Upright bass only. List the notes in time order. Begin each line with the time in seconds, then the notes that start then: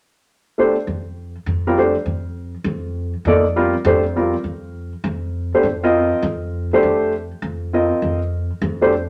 0.87 F2
1.46 F2
2.06 F2
2.64 F2
3.25 F2
3.85 F2
4.44 F2
5.04 F2
5.63 F2
6.22 F2
6.83 F2
7.42 F2
8.02 F2
8.62 F2